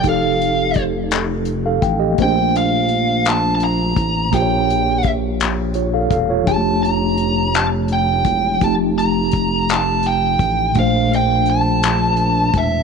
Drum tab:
HH |xxxxxx|xxxxxx|xxxxxx|xxxxxx|
CP |---x--|---x--|---x--|---x--|
BD |o-o--o|o----o|o-o--o|o----o|

HH |xxxxxx|xxxxxx|
CP |---x--|---x--|
BD |o-o--o|o----o|